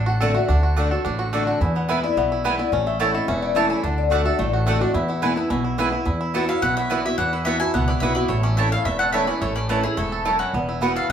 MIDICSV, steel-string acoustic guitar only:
0, 0, Header, 1, 2, 480
1, 0, Start_track
1, 0, Tempo, 278940
1, 852, Time_signature, 4, 2, 24, 8
1, 19139, End_track
2, 0, Start_track
2, 0, Title_t, "Steel-string acoustic guitar"
2, 0, Program_c, 0, 25
2, 0, Note_on_c, 0, 45, 100
2, 363, Note_on_c, 0, 50, 97
2, 378, Note_on_c, 0, 57, 98
2, 389, Note_on_c, 0, 62, 95
2, 395, Note_on_c, 0, 66, 94
2, 590, Note_off_c, 0, 66, 0
2, 605, Note_off_c, 0, 50, 0
2, 610, Note_on_c, 0, 66, 68
2, 613, Note_off_c, 0, 57, 0
2, 618, Note_off_c, 0, 62, 0
2, 644, Note_on_c, 0, 62, 51
2, 803, Note_off_c, 0, 45, 0
2, 838, Note_off_c, 0, 66, 0
2, 855, Note_off_c, 0, 62, 0
2, 860, Note_on_c, 0, 50, 89
2, 1308, Note_off_c, 0, 50, 0
2, 1329, Note_on_c, 0, 50, 82
2, 1337, Note_on_c, 0, 57, 88
2, 1346, Note_on_c, 0, 62, 83
2, 1356, Note_on_c, 0, 66, 101
2, 1561, Note_off_c, 0, 66, 0
2, 1567, Note_off_c, 0, 50, 0
2, 1572, Note_off_c, 0, 57, 0
2, 1576, Note_off_c, 0, 62, 0
2, 1581, Note_on_c, 0, 66, 66
2, 1612, Note_on_c, 0, 62, 53
2, 1803, Note_off_c, 0, 66, 0
2, 1818, Note_off_c, 0, 62, 0
2, 1820, Note_on_c, 0, 45, 102
2, 2286, Note_on_c, 0, 50, 86
2, 2303, Note_on_c, 0, 57, 95
2, 2310, Note_on_c, 0, 62, 92
2, 2314, Note_on_c, 0, 66, 101
2, 2727, Note_off_c, 0, 45, 0
2, 2744, Note_off_c, 0, 50, 0
2, 2753, Note_off_c, 0, 57, 0
2, 2756, Note_off_c, 0, 62, 0
2, 2758, Note_off_c, 0, 66, 0
2, 2782, Note_on_c, 0, 40, 89
2, 3259, Note_on_c, 0, 52, 88
2, 3273, Note_on_c, 0, 56, 85
2, 3282, Note_on_c, 0, 59, 86
2, 3287, Note_on_c, 0, 64, 78
2, 3486, Note_off_c, 0, 64, 0
2, 3491, Note_off_c, 0, 52, 0
2, 3498, Note_off_c, 0, 56, 0
2, 3502, Note_off_c, 0, 59, 0
2, 3506, Note_on_c, 0, 64, 72
2, 3544, Note_on_c, 0, 59, 55
2, 3688, Note_off_c, 0, 40, 0
2, 3724, Note_off_c, 0, 64, 0
2, 3737, Note_on_c, 0, 47, 98
2, 3743, Note_off_c, 0, 59, 0
2, 4215, Note_on_c, 0, 52, 87
2, 4232, Note_on_c, 0, 56, 90
2, 4233, Note_on_c, 0, 59, 83
2, 4248, Note_on_c, 0, 64, 96
2, 4432, Note_off_c, 0, 64, 0
2, 4448, Note_off_c, 0, 52, 0
2, 4452, Note_on_c, 0, 64, 65
2, 4457, Note_off_c, 0, 56, 0
2, 4458, Note_off_c, 0, 59, 0
2, 4489, Note_on_c, 0, 59, 58
2, 4644, Note_off_c, 0, 47, 0
2, 4676, Note_off_c, 0, 64, 0
2, 4694, Note_on_c, 0, 45, 88
2, 4695, Note_off_c, 0, 59, 0
2, 5156, Note_on_c, 0, 52, 73
2, 5177, Note_on_c, 0, 57, 93
2, 5185, Note_on_c, 0, 61, 76
2, 5189, Note_on_c, 0, 64, 95
2, 5389, Note_off_c, 0, 64, 0
2, 5398, Note_off_c, 0, 52, 0
2, 5409, Note_off_c, 0, 57, 0
2, 5409, Note_on_c, 0, 64, 59
2, 5413, Note_off_c, 0, 61, 0
2, 5448, Note_on_c, 0, 61, 51
2, 5603, Note_off_c, 0, 45, 0
2, 5634, Note_off_c, 0, 64, 0
2, 5645, Note_on_c, 0, 40, 108
2, 5653, Note_off_c, 0, 61, 0
2, 6105, Note_on_c, 0, 52, 97
2, 6119, Note_on_c, 0, 57, 90
2, 6126, Note_on_c, 0, 61, 85
2, 6137, Note_on_c, 0, 64, 91
2, 6557, Note_off_c, 0, 40, 0
2, 6571, Note_off_c, 0, 52, 0
2, 6578, Note_off_c, 0, 57, 0
2, 6582, Note_off_c, 0, 61, 0
2, 6587, Note_off_c, 0, 64, 0
2, 6602, Note_on_c, 0, 50, 97
2, 7034, Note_off_c, 0, 50, 0
2, 7055, Note_on_c, 0, 50, 86
2, 7066, Note_on_c, 0, 57, 75
2, 7081, Note_on_c, 0, 62, 90
2, 7091, Note_on_c, 0, 66, 84
2, 7287, Note_off_c, 0, 66, 0
2, 7307, Note_off_c, 0, 50, 0
2, 7307, Note_on_c, 0, 66, 69
2, 7312, Note_off_c, 0, 57, 0
2, 7319, Note_off_c, 0, 62, 0
2, 7344, Note_on_c, 0, 62, 56
2, 7542, Note_off_c, 0, 66, 0
2, 7550, Note_on_c, 0, 45, 102
2, 7560, Note_off_c, 0, 62, 0
2, 8041, Note_on_c, 0, 50, 89
2, 8048, Note_on_c, 0, 57, 113
2, 8063, Note_on_c, 0, 62, 96
2, 8069, Note_on_c, 0, 66, 106
2, 8254, Note_off_c, 0, 66, 0
2, 8275, Note_on_c, 0, 66, 76
2, 8279, Note_off_c, 0, 50, 0
2, 8282, Note_off_c, 0, 57, 0
2, 8286, Note_off_c, 0, 62, 0
2, 8307, Note_on_c, 0, 62, 57
2, 8469, Note_off_c, 0, 45, 0
2, 8505, Note_off_c, 0, 66, 0
2, 8513, Note_on_c, 0, 40, 99
2, 8521, Note_off_c, 0, 62, 0
2, 8982, Note_on_c, 0, 52, 85
2, 8997, Note_on_c, 0, 56, 91
2, 9011, Note_on_c, 0, 59, 104
2, 9025, Note_on_c, 0, 64, 97
2, 9201, Note_off_c, 0, 64, 0
2, 9222, Note_on_c, 0, 64, 72
2, 9229, Note_off_c, 0, 52, 0
2, 9236, Note_off_c, 0, 56, 0
2, 9237, Note_off_c, 0, 59, 0
2, 9257, Note_on_c, 0, 59, 52
2, 9430, Note_off_c, 0, 40, 0
2, 9458, Note_off_c, 0, 64, 0
2, 9472, Note_on_c, 0, 47, 102
2, 9476, Note_off_c, 0, 59, 0
2, 9943, Note_on_c, 0, 52, 95
2, 9957, Note_on_c, 0, 56, 85
2, 9971, Note_on_c, 0, 59, 90
2, 9982, Note_on_c, 0, 64, 109
2, 10171, Note_off_c, 0, 64, 0
2, 10190, Note_off_c, 0, 52, 0
2, 10191, Note_on_c, 0, 64, 61
2, 10197, Note_off_c, 0, 56, 0
2, 10204, Note_off_c, 0, 59, 0
2, 10226, Note_on_c, 0, 59, 57
2, 10390, Note_off_c, 0, 47, 0
2, 10418, Note_on_c, 0, 40, 98
2, 10423, Note_off_c, 0, 64, 0
2, 10440, Note_off_c, 0, 59, 0
2, 10905, Note_on_c, 0, 52, 77
2, 10921, Note_on_c, 0, 59, 78
2, 10928, Note_on_c, 0, 64, 83
2, 10936, Note_on_c, 0, 66, 101
2, 11125, Note_off_c, 0, 66, 0
2, 11146, Note_on_c, 0, 66, 69
2, 11151, Note_off_c, 0, 52, 0
2, 11159, Note_off_c, 0, 59, 0
2, 11162, Note_off_c, 0, 64, 0
2, 11184, Note_on_c, 0, 64, 56
2, 11343, Note_off_c, 0, 40, 0
2, 11381, Note_off_c, 0, 66, 0
2, 11388, Note_on_c, 0, 47, 85
2, 11400, Note_off_c, 0, 64, 0
2, 11873, Note_on_c, 0, 52, 78
2, 11891, Note_on_c, 0, 59, 89
2, 11898, Note_on_c, 0, 64, 91
2, 11909, Note_on_c, 0, 66, 101
2, 12114, Note_off_c, 0, 66, 0
2, 12115, Note_off_c, 0, 52, 0
2, 12125, Note_off_c, 0, 59, 0
2, 12128, Note_off_c, 0, 64, 0
2, 12134, Note_on_c, 0, 66, 59
2, 12160, Note_on_c, 0, 64, 54
2, 12310, Note_off_c, 0, 47, 0
2, 12356, Note_off_c, 0, 66, 0
2, 12360, Note_on_c, 0, 40, 85
2, 12368, Note_off_c, 0, 64, 0
2, 12817, Note_on_c, 0, 52, 87
2, 12838, Note_on_c, 0, 59, 82
2, 12846, Note_on_c, 0, 64, 83
2, 12853, Note_on_c, 0, 66, 90
2, 13066, Note_off_c, 0, 66, 0
2, 13069, Note_off_c, 0, 52, 0
2, 13079, Note_off_c, 0, 59, 0
2, 13083, Note_off_c, 0, 64, 0
2, 13087, Note_on_c, 0, 66, 66
2, 13117, Note_on_c, 0, 64, 50
2, 13277, Note_off_c, 0, 40, 0
2, 13313, Note_off_c, 0, 66, 0
2, 13316, Note_on_c, 0, 47, 102
2, 13328, Note_off_c, 0, 64, 0
2, 13805, Note_on_c, 0, 52, 92
2, 13824, Note_on_c, 0, 59, 88
2, 13834, Note_on_c, 0, 64, 89
2, 13845, Note_on_c, 0, 66, 91
2, 14027, Note_off_c, 0, 66, 0
2, 14044, Note_off_c, 0, 52, 0
2, 14047, Note_on_c, 0, 66, 68
2, 14053, Note_off_c, 0, 59, 0
2, 14058, Note_off_c, 0, 64, 0
2, 14081, Note_on_c, 0, 64, 54
2, 14236, Note_off_c, 0, 47, 0
2, 14274, Note_off_c, 0, 66, 0
2, 14280, Note_on_c, 0, 45, 86
2, 14291, Note_off_c, 0, 64, 0
2, 14753, Note_on_c, 0, 52, 74
2, 14768, Note_on_c, 0, 57, 82
2, 14775, Note_on_c, 0, 61, 88
2, 14792, Note_on_c, 0, 64, 98
2, 14987, Note_off_c, 0, 64, 0
2, 14998, Note_off_c, 0, 52, 0
2, 15006, Note_off_c, 0, 57, 0
2, 15007, Note_on_c, 0, 64, 66
2, 15010, Note_off_c, 0, 61, 0
2, 15046, Note_on_c, 0, 61, 48
2, 15198, Note_off_c, 0, 45, 0
2, 15235, Note_off_c, 0, 64, 0
2, 15248, Note_on_c, 0, 40, 95
2, 15254, Note_off_c, 0, 61, 0
2, 15717, Note_on_c, 0, 52, 79
2, 15727, Note_on_c, 0, 57, 89
2, 15742, Note_on_c, 0, 61, 93
2, 15745, Note_on_c, 0, 64, 101
2, 15957, Note_off_c, 0, 64, 0
2, 15962, Note_off_c, 0, 52, 0
2, 15967, Note_off_c, 0, 57, 0
2, 15974, Note_off_c, 0, 61, 0
2, 15977, Note_on_c, 0, 64, 67
2, 16010, Note_on_c, 0, 61, 54
2, 16164, Note_off_c, 0, 40, 0
2, 16201, Note_off_c, 0, 64, 0
2, 16212, Note_on_c, 0, 45, 83
2, 16217, Note_off_c, 0, 61, 0
2, 16677, Note_on_c, 0, 52, 93
2, 16698, Note_on_c, 0, 57, 87
2, 16706, Note_on_c, 0, 61, 93
2, 16713, Note_on_c, 0, 64, 83
2, 16915, Note_off_c, 0, 64, 0
2, 16922, Note_off_c, 0, 52, 0
2, 16933, Note_off_c, 0, 57, 0
2, 16936, Note_on_c, 0, 64, 62
2, 16937, Note_off_c, 0, 61, 0
2, 16975, Note_on_c, 0, 61, 51
2, 17126, Note_off_c, 0, 45, 0
2, 17161, Note_off_c, 0, 64, 0
2, 17180, Note_off_c, 0, 61, 0
2, 17180, Note_on_c, 0, 44, 89
2, 17633, Note_off_c, 0, 44, 0
2, 17665, Note_on_c, 0, 42, 90
2, 18116, Note_off_c, 0, 42, 0
2, 18147, Note_on_c, 0, 40, 83
2, 18599, Note_on_c, 0, 52, 84
2, 18614, Note_on_c, 0, 59, 86
2, 18626, Note_on_c, 0, 64, 86
2, 18628, Note_on_c, 0, 66, 91
2, 19055, Note_off_c, 0, 40, 0
2, 19064, Note_off_c, 0, 52, 0
2, 19072, Note_off_c, 0, 59, 0
2, 19078, Note_off_c, 0, 64, 0
2, 19078, Note_off_c, 0, 66, 0
2, 19139, End_track
0, 0, End_of_file